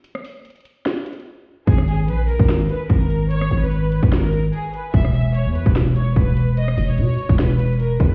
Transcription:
<<
  \new Staff \with { instrumentName = "Violin section" } { \time 4/4 \key gis \minor \tempo 4 = 147 r1 | gis'8 gis'8 b'8 ais'8 r8 b'8 ais'4 | cis''8. b'4~ b'16 ais'4 gis'8 b'8 | e''8 e''8 cis''8 b'8 r8 cis''8 b'4 |
dis''8. cis''4~ cis''16 b'4 ais'8 b'8 | }
  \new Staff \with { instrumentName = "808-style bass" } { \clef bass \time 4/4 \key gis \minor r1 | gis,,4 ais,,8. gis,,8. r8 gis,,4~ | gis,,8 gis,,4~ gis,,16 gis,,4~ gis,,16 r4 | e,,4~ e,,16 e,8 e,,4~ e,,16 e,,4~ |
e,,8 e,,8 b,16 r8 e,,4.~ e,,16 e,8 | }
  \new DrumStaff \with { instrumentName = "Drums" } \drummode { \time 4/4 hh16 ss16 hho8 hh32 hh32 hh32 hh32 hh8 \tuplet 3/2 { <hh sn>16 r16 r16 hh16 hh16 hh16 } r4 | <hh bd>16 ss16 hh8 hh8 hh16 bd16 <hh ss sn>8 hh8 <hh bd>8 hh8 | hh16 ss16 hh8 hh8 hh16 bd16 <hh ss sn>8 hh8 hh8 hh8 | <hh bd>16 ss16 hh8 hh8 hh16 bd16 <hh ss sn>8 hh8 <hh bd>8 hh8 |
hh16 ss16 hho8 hh32 hh32 hh32 hh32 hh16 bd16 \tuplet 3/2 { <hh sn>16 r16 r16 hh16 hh16 hh16 } hh8 <hh bd>8 | }
>>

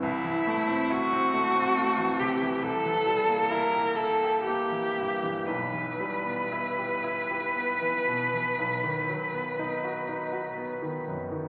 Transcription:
<<
  \new Staff \with { instrumentName = "Cello" } { \time 12/8 \key e \minor \tempo 4. = 41 e'4 fis'4. g'8 a'4 bes'8 a'8 g'4 | b'1~ b'4. r8 | }
  \new Staff \with { instrumentName = "Grand piano" } { \time 12/8 \key e \minor c,16 e16 a16 c'16 e'16 c'16 a16 c'16 a16 e16 c16 e16 c,16 e16 g16 bes16 e'16 g'16 e'16 g'16 bes16 e16 g,16 e16 | b,,16 e16 g16 b16 e'16 g'16 e'16 g'16 b16 e16 b,16 e16 b,,16 dis16 fis16 b16 dis'16 fis'16 dis'16 fis'16 b16 dis16 fis,16 dis16 | }
>>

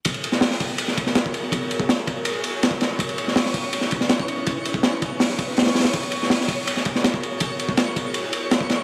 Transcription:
<<
  \new Staff \with { instrumentName = "Synth texture" } { \time 4/4 \key gis \minor \tempo 4 = 163 <cis'' cis'''>1~ | <cis'' cis'''>1~ | <cis'' cis'''>1~ | <cis'' cis'''>1~ |
<cis'' cis'''>1~ | <cis'' cis'''>1 | }
  \new Staff \with { instrumentName = "Ambient pad" } { \time 4/4 \key gis \minor <b fis' gis' ais'>1~ | <b fis' gis' ais'>1 | <cis' dis' e' b'>1~ | <cis' dis' e' b'>1 |
<b fis' gis' ais'>1~ | <b fis' gis' ais'>1 | }
  \new DrumStaff \with { instrumentName = "Drums" } \drummode { \time 4/4 <bd cymr>16 cymr16 cymr16 sn16 <hho sn>16 sn16 <bd cymr>8 cymr16 sn16 <bd cymr>16 sn16 <cymr sn>16 bd16 cymr8 | <bd cymr>8 cymr16 bd16 <cymr sn>8 <bd cymr>8 cymr8 cymr8 <cymr sn>16 bd16 <cymr sn>8 | <bd cymr>16 cymr16 cymr16 sn16 <hho sn>16 sn16 <bd cymr>8 cymr16 sn16 <bd cymr>16 sn16 <cymr sn>16 bd16 cymr8 | <bd cymr>8 cymr16 bd16 <cymr sn>8 <bd cymr>8 <hho sn>16 sn16 <bd cymr>8 <hho sn>32 <hho sn>32 <hho sn>16 <hho sn>32 <hho sn>32 <hho sn>16 |
<bd cymr>16 cymr16 cymr16 sn16 <hho sn>16 sn16 <bd cymr>8 cymr16 sn16 <bd cymr>16 sn16 <cymr sn>16 bd16 cymr8 | <bd cymr>8 cymr16 bd16 <cymr sn>8 <bd cymr>8 cymr8 cymr8 <cymr sn>16 bd16 <cymr sn>8 | }
>>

